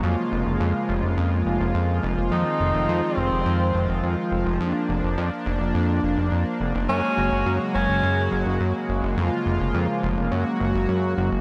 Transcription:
Already playing: analog synth pad C#3 G#3 A#3
0.03 analog synth bass F2, analog synth pad F3 F4
0.32 analog synth bass F1
0.46 analog synth bass F1
0.60 analog synth bass F2
0.89 analog synth bass F1
1.03 analog synth bass F1
1.17 analog synth bass F2
1.46 analog synth bass F1
1.60 analog synth bass F1
1.74 analog synth bass F2
2.03 analog synth bass F1
2.18 analog synth bass F1
2.32 analog synth bass F2, analog synth pad D#3 C4, tenor saxophone D#4
2.60 analog synth bass F1
2.75 analog synth bass F1
2.89 analog synth bass F2
3.17 analog synth bass F1, tenor saxophone C4
3.32 analog synth bass F1
3.46 analog synth bass F2
3.74 analog synth bass F1
3.89 analog synth bass F1
4.03 analog synth bass F2
4.32 analog synth bass F1
4.46 analog synth bass F1
4.60 analog synth bass F2, analog synth pad A#3 D4
4.89 analog synth bass F1
5.03 analog synth bass F1
5.18 analog synth bass F2
5.46 analog synth bass F1
5.60 analog synth bass F1
5.75 analog synth bass F2
6.03 analog synth bass F1
6.18 analog synth bass F1
6.32 analog synth bass F2
6.60 analog synth bass F1
6.75 analog synth bass F1
6.89 analog synth bass F#2, analog synth pad C#3 F#3 G#3 F#4, tenor saxophone C#4
7.18 analog synth bass F#1
7.32 analog synth bass F#1
7.46 analog synth bass F#2
7.75 analog synth bass F#1, tenor saxophone C#4
7.89 analog synth bass F#1
8.03 analog synth bass F#2
8.32 analog synth bass F#1
8.46 analog synth bass F#1
8.60 analog synth bass F#2
8.89 analog synth bass F#1
9.03 analog synth bass F#1
9.17 analog synth bass F2, analog synth pad F3 A#3 F4
9.46 analog synth bass F1
9.60 analog synth bass F1
9.74 analog synth bass F2
10.03 analog synth bass F1
10.17 analog synth bass F1
10.32 analog synth bass F#2, analog synth pad F#3 F#4
10.60 analog synth bass F#1
10.74 analog synth bass F#1
10.89 analog synth bass F#2
11.18 analog synth bass F#1
11.32 analog synth bass F#1

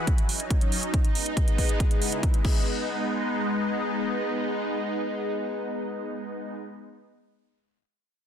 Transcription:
0.07 analog synth pad F#3 C#4 D#4, kick, closed hi-hat
0.18 closed hi-hat
0.29 open hi-hat
0.40 closed hi-hat
0.50 kick, closed hi-hat
0.61 closed hi-hat
0.72 open hi-hat
0.83 closed hi-hat
0.94 analog synth pad G#3 B3 D#4, kick, closed hi-hat
1.05 closed hi-hat
1.15 open hi-hat
1.26 closed hi-hat
1.37 kick, closed hi-hat
1.48 closed hi-hat
1.58 kick, open hi-hat
1.69 closed hi-hat
1.80 analog synth pad C#3 E4, kick, closed hi-hat
1.91 closed hi-hat
2.02 open hi-hat
2.12 closed hi-hat
2.23 kick, closed hi-hat
2.34 closed hi-hat
2.45 analog synth pad G#3 B3 D#4, kick, crash

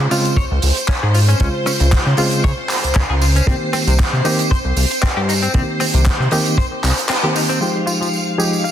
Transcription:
Already playing: string machine C5
0.11 reed electric piano C#3 G#3 C4 F4, clean electric guitar F4, open hi-hat, tambourine
0.25 closed hi-hat, tambourine
0.37 analog synth bass C#2, clean electric guitar C#5, kick, closed hi-hat
0.51 analog synth bass C#2
0.62 analog synth bass C#2, open hi-hat, tambourine
0.77 closed hi-hat, tambourine
0.88 clean electric guitar C#4, kick, clap, closed hi-hat
1.03 analog synth bass G#2, clean electric guitar G#4
1.14 clean electric guitar F4, open hi-hat, tambourine
1.28 clean electric guitar C#4, closed hi-hat, tambourine
1.40 analog synth bass C#2, reed electric piano C#3 G#3 F4 C5, clean electric guitar C#4, kick, closed hi-hat, tambourine
1.66 clean electric guitar C#4, cross-stick, open hi-hat, tambourine
1.80 analog synth bass C#2, clean electric guitar C#3, closed hi-hat, tambourine
1.92 kick, clap, closed hi-hat
2.06 analog synth bass C#3, cross-stick
2.17 reed electric piano C#3 G#3 C4 F4, clean electric guitar F4, open hi-hat, tambourine
2.31 closed hi-hat, tambourine
2.44 analog synth bass C#3, clean electric guitar C#5, kick, closed hi-hat
2.69 clap, open hi-hat, tambourine
2.84 analog synth bass C#2, closed hi-hat, tambourine
2.95 analog synth bass C#2, clean electric guitar C#4, kick, clap, closed hi-hat
3.10 analog synth bass C#2, clean electric guitar G#4
3.22 clean electric guitar F4, open hi-hat, tambourine
3.36 clean electric guitar C#4, closed hi-hat, tambourine
3.46 analog synth bass C2, reed electric piano D#3 A#3 C4 G4, clean electric guitar C4, kick, closed hi-hat, tambourine
3.73 clean electric guitar C4, cross-stick, open hi-hat, tambourine
3.87 analog synth bass C2, clean electric guitar C3, closed hi-hat, tambourine
3.99 kick, clap, closed hi-hat, tambourine
4.13 analog synth bass C3, cross-stick
4.25 reed electric piano D#3 A#3 C4 G4, clean electric guitar D#4, open hi-hat, tambourine
4.39 closed hi-hat, tambourine
4.51 analog synth bass C2, clean electric guitar C5, kick, closed hi-hat
4.65 analog synth bass C2
4.76 analog synth bass C2, open hi-hat, tambourine
4.91 closed hi-hat, tambourine
5.03 clean electric guitar C4, kick, clap, closed hi-hat
5.17 analog synth bass G2, clean electric guitar G4
5.29 clean electric guitar D#4, open hi-hat, tambourine
5.42 clean electric guitar C4, closed hi-hat, tambourine
5.53 analog synth bass C2, reed electric piano D#3 A#3 C4 G4, clean electric guitar C4, kick, closed hi-hat
5.80 clean electric guitar C4, cross-stick, open hi-hat, tambourine
5.94 analog synth bass C2, clean electric guitar C3, closed hi-hat, tambourine
6.06 kick, clap, closed hi-hat
6.20 analog synth bass C3, cross-stick
6.31 reed electric piano D#3 A#3 C4 G4, clean electric guitar D#4, open hi-hat, tambourine
6.46 closed hi-hat, tambourine
6.58 clean electric guitar C5, kick, closed hi-hat
6.84 analog synth bass C2, clap, open hi-hat, tambourine
6.97 closed hi-hat, tambourine
7.09 clean electric guitar C4, clap, closed hi-hat, tambourine
7.23 reed electric piano D#3 A#3 C4 G4, clean electric guitar G4
7.35 clean electric guitar D#4, open hi-hat, tambourine
7.49 clean electric guitar C4, closed hi-hat, tambourine
7.60 reed electric piano F3 G#3 D#4 G4, clean electric guitar F4, string machine F5, tambourine
7.87 clean electric guitar F4, tambourine
8.01 clean electric guitar F3, tambourine
8.14 tambourine
8.38 reed electric piano F3 G#3 D#4 G4, clean electric guitar G#4, tambourine
8.53 tambourine
8.64 clean electric guitar F5, tambourine

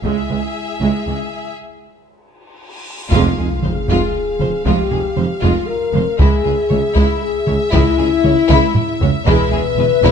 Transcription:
0.03 double bass section C#2, cello section C#2, french horn section G#3 E4, viola section G#3, violin section G#4 E5, taiko
0.30 double bass section C#2, cello section C#2, viola section G#3
0.81 double bass section C#2, cello section C#2, viola section G#3
1.06 double bass section C#2, cello section C#2, viola section G#3
1.58 cymbal swell
3.11 double bass section F1, tuba F1, timpani F2, cello section F2, viola section G#3, french horn section F4, violin section F4 F5, taiko, sub drop
3.37 double bass section F1, tuba F1, cello section F2, viola section G#3, violin section G#4
3.63 double bass section F1, tuba F1, cello section F2, viola section G#3, french horn section G#4, violin section C5, taiko mid
3.88 double bass section F1, tuba F1, cello section F2, viola section G#3, violin section F4, taiko
4.40 double bass section F1, tuba F1, cello section F2, viola section G#3, violin section C5, taiko mid
4.65 double bass section F1, tuba F1, cello section F2, viola section G#3, violin section F4, french horn section G4, taiko
4.91 tuba F1, double bass section F1, cello section F2, viola section G#3, violin section G#4
5.16 tuba F1, double bass section F1, cello section F2, viola section G#3, violin section C5, taiko mid
5.42 tuba F1, double bass section F1, cello section F2, viola section G#3, violin section F4, french horn section F4, taiko
5.68 french horn section A#4
5.92 tuba F1, double bass section F1, cello section F2, viola section G#3, violin section C5, taiko mid
6.19 tuba C#2, cello section C#2, double bass section C#2, viola section G#3, violin section E4 E5, french horn section G#4, taiko
6.44 tuba C#2, double bass section C#2, cello section C#2, viola section G#3, violin section G#4
6.69 cello section C#2, double bass section C#2, tuba C#2, viola section G#3, violin section C#5, taiko mid
6.94 tuba C#2, cello section C#2, double bass section C#2, viola section G#3, violin section E4, taiko
7.22 french horn section G#4
7.46 cello section C#2, tuba C#2, double bass section C#2, viola section G#3, violin section C#5, taiko mid
7.72 cello section C#2, tuba C#2, double bass section C#2, viola section G#3, french horn section E4, violin section E4, taiko
7.98 cello section C#2, tuba C#2, double bass section C#2, viola section G#3, violin section G#4
8.23 cello section C#2, tuba C#2, double bass section C#2, viola section G#3, violin section C#5, taiko mid
8.49 double bass section C#2, tuba C#2, cello section C#2, viola section G#3, violin section E4, taiko mid
8.75 french horn section E4, taiko low-mid
9.01 double bass section C#2, tuba C#2, cello section C#2, viola section G#3, violin section C#5, taiko low
9.26 double bass section E1, tuba E1, cello section E2, viola section G#3, violin section E4 E5, french horn section B4, taiko
9.52 double bass section E1, tuba E1, cello section E2, viola section G#3, violin section G#4
9.77 tuba E1, double bass section E1, cello section E2, viola section G#3, violin section B4, taiko mid
10.03 tuba E1, double bass section E1, cello section E2, viola section G#3, violin section E4, taiko

